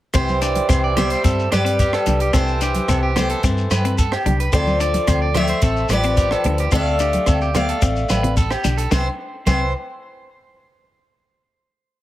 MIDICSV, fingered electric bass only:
0, 0, Header, 1, 2, 480
1, 0, Start_track
1, 0, Key_signature, 0, "major"
1, 0, Tempo, 549451
1, 129, Time_signature, 4, 2, 24, 8
1, 10501, End_track
2, 0, Start_track
2, 0, Title_t, "Fingered electric bass"
2, 0, Program_c, 0, 33
2, 131, Note_on_c, 0, 36, 80
2, 519, Note_off_c, 0, 36, 0
2, 606, Note_on_c, 0, 36, 81
2, 996, Note_off_c, 0, 36, 0
2, 1091, Note_on_c, 0, 43, 84
2, 1285, Note_off_c, 0, 43, 0
2, 1335, Note_on_c, 0, 43, 75
2, 1721, Note_off_c, 0, 43, 0
2, 1808, Note_on_c, 0, 36, 71
2, 2002, Note_off_c, 0, 36, 0
2, 2045, Note_on_c, 0, 36, 78
2, 2434, Note_off_c, 0, 36, 0
2, 2519, Note_on_c, 0, 36, 80
2, 2909, Note_off_c, 0, 36, 0
2, 3001, Note_on_c, 0, 43, 79
2, 3196, Note_off_c, 0, 43, 0
2, 3239, Note_on_c, 0, 43, 72
2, 3627, Note_off_c, 0, 43, 0
2, 3717, Note_on_c, 0, 36, 82
2, 3912, Note_off_c, 0, 36, 0
2, 3961, Note_on_c, 0, 38, 87
2, 4347, Note_off_c, 0, 38, 0
2, 4437, Note_on_c, 0, 38, 89
2, 4824, Note_off_c, 0, 38, 0
2, 4913, Note_on_c, 0, 33, 83
2, 5107, Note_off_c, 0, 33, 0
2, 5143, Note_on_c, 0, 33, 77
2, 5534, Note_off_c, 0, 33, 0
2, 5630, Note_on_c, 0, 38, 76
2, 5824, Note_off_c, 0, 38, 0
2, 5874, Note_on_c, 0, 38, 89
2, 6260, Note_off_c, 0, 38, 0
2, 6357, Note_on_c, 0, 38, 81
2, 6742, Note_off_c, 0, 38, 0
2, 6835, Note_on_c, 0, 33, 80
2, 7027, Note_off_c, 0, 33, 0
2, 7072, Note_on_c, 0, 33, 76
2, 7459, Note_off_c, 0, 33, 0
2, 7555, Note_on_c, 0, 35, 74
2, 7748, Note_off_c, 0, 35, 0
2, 7792, Note_on_c, 0, 36, 83
2, 7926, Note_off_c, 0, 36, 0
2, 8275, Note_on_c, 0, 36, 83
2, 8498, Note_off_c, 0, 36, 0
2, 10501, End_track
0, 0, End_of_file